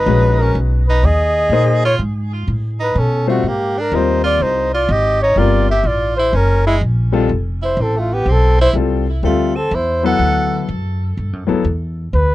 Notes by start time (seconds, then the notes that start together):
Already playing: D#4 B4
0.06 A#1 G#3 C#4 F#4 B4
0.39 C#4 A#4
0.55 B1
0.88 D#4 B4
1.03 D#2 G#4 D#5
1.49 A#2 A#3 D#4 G#4 C5
1.85 F4 C#5
1.99 G#2
2.48 A2
2.80 D#4 B4
2.95 B2 C#4
3.00 A4
3.27 G3 A3 C4 F4 F#4 C5
3.43 G#2
3.48 A#3 G4
3.78 D4 A#4
3.92 D#2 G3 C4 D#4 F4 A#4
3.96 C5
4.24 F4 D5
4.40 C2 D#4 C5
4.74 F4 D5
4.89 G#1 G4 D#5
5.22 D#4 C#5
5.36 G1 G3 C4 F4 A#4 D5
5.70 G4 E5
5.84 A1 F4 D5
6.17 E4 C5
6.33 F#1 C#4 A#4
6.67 G#3 E4
6.81 A#1
7.12 G3 C4 F4 A4
7.29 F1
7.62 E4 C5
7.77 A1 C4
7.82 A4
7.97 A3 F4
8.13 B3 G4
8.26 B1 C4
8.32 A4
8.61 E4 C5
8.73 C2 G3 C4 F4 A4
9.23 D2 G3 A3 C4 F4 A4
9.56 C4 A4
9.71 E2 E4 C5
10.03 F#3 B3 E4 A4 B4 F#5
10.19 D2
10.69 F#2
11.17 G2
11.33 F#2
11.47 D2 F#3 B3 E4 A4
11.64 E2
12.13 D2 B4